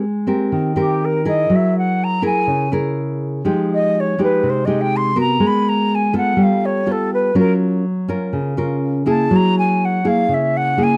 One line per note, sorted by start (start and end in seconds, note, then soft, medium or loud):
0.00 0.50 G#3 medium
0.27 0.72 C4 medium
0.27 0.72 G4 medium
0.27 0.73 A#4 medium
0.52 1.47 D#3 medium
0.76 1.21 C4 medium
0.76 1.21 G4 medium
0.76 1.06 G4 medium
0.76 1.22 A#4 medium
1.05 1.27 A#4 medium
1.25 2.19 E4 medium
1.25 2.19 G#4 medium
1.25 2.19 A#4 medium
1.25 1.57 D#5 medium
1.50 2.45 F#3 medium
1.55 1.77 E5 medium
1.78 2.05 F#5 medium
2.04 2.25 A#5 medium
2.22 2.67 E4 medium
2.22 2.68 G#4 medium
2.22 2.68 A#4 medium
2.22 2.70 G#5 medium
2.47 3.42 C#3 medium
2.72 3.41 E4 medium
2.72 3.41 G#4 medium
2.72 3.42 A#4 medium
3.45 4.40 F3 medium
3.45 4.14 G#3 medium
3.45 4.14 D#4 medium
3.45 4.15 G4 medium
3.74 4.01 D#5 medium
4.00 4.21 C#5 medium
4.18 4.63 G#3 medium
4.18 4.64 D#4 medium
4.18 4.64 G4 medium
4.23 4.51 B4 medium
4.43 5.38 C3 medium
4.50 4.66 C5 medium
4.65 5.12 G#3 medium
4.65 5.12 D#4 medium
4.65 5.12 G4 medium
4.65 4.82 D#5 medium
4.81 4.98 G5 medium
4.96 5.18 C6 loud
5.16 6.09 B3 medium
5.16 6.09 F#4 medium
5.16 6.10 A#4 medium
5.20 5.48 A#5 medium
5.40 6.35 G#3 medium
5.47 5.70 B5 medium
5.69 5.96 A#5 medium
5.95 6.16 G#5 medium
6.13 6.82 B3 medium
6.13 6.83 F4 medium
6.13 6.83 A4 medium
6.17 6.45 F#5 medium
6.37 7.32 G3 medium
6.43 6.67 F5 medium
6.65 6.93 C#5 medium
6.86 7.31 B3 medium
6.86 7.31 F4 medium
6.86 7.32 A4 medium
6.91 7.13 A4 medium
7.13 7.35 B4 medium
7.35 8.30 F#3 medium
7.35 7.84 C#4 medium
7.35 7.84 F4 medium
7.35 7.84 A#4 medium
7.39 7.53 A#4 medium
8.08 8.53 C#4 medium
8.08 8.54 F4 medium
8.08 8.54 A#4 medium
8.33 9.28 C#3 medium
8.57 9.02 C#4 medium
8.57 9.02 F4 medium
8.57 9.02 A#4 medium
9.06 10.00 A#3 medium
9.06 10.00 E4 medium
9.06 10.00 G#4 medium
9.06 9.37 A5 medium
9.31 10.26 F#3 medium
9.36 9.57 A#5 medium
9.59 9.86 G#5 medium
9.85 10.09 F#5 medium
10.04 10.73 A#3 medium
10.04 10.73 E4 medium
10.04 10.74 G#4 medium
10.04 10.35 F5 medium
10.29 10.97 C#3 medium
10.34 10.58 E5 medium
10.57 10.85 F#5 loud
10.77 10.97 A#3 medium
10.77 10.97 E4 medium
10.77 10.97 G#4 medium
10.83 10.97 G#5 medium